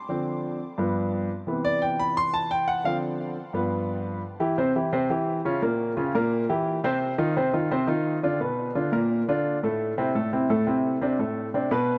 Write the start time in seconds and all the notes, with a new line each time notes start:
Already playing: C6
0.09 D3 F3 C4
0.78 G2 F3 B3
1.47 C3 E3 B3
1.65 D5
1.82 G5
2.00 B5
2.17 C6
2.34 A5
2.51 G5
2.68 F#5
2.84 D3 F3 C4 F5
3.53 G2 F3 B3
4.40 E3 E4 G4
4.58 C3 C4 C5
4.76 E3 E4 G4
4.93 C3 C4 C5
5.10 E3 E4 G4
5.45 C#3 C#4 F4
5.62 A#2 A#3 A#4
5.97 C#3 C#4 F4
6.15 A#2 A#3 A#4
6.49 E3 E4 G4
6.84 C3 C4 C5
7.18 D#3 D#4 F4
7.36 C3 C4 C5
7.53 D#3 D#4 F4
7.71 C3 C4 C5
7.87 D#3 D#4 F4
8.23 D3 D4 F4
8.40 B2 B3 B4
8.75 D3 D4 F4
8.92 A#2 A#3 A#4
9.28 D3 D4 F4
9.63 A2 A3 A4
9.98 C3 C4 E4
10.15 A2 A3 A4
10.33 C3 C4 E4
10.50 A2 A3 A4
10.67 C3 C4 E4
11.01 C3 C4 D4
11.19 A2 A3 A4
11.54 C3 C4 D4
11.71 B2 B3 B4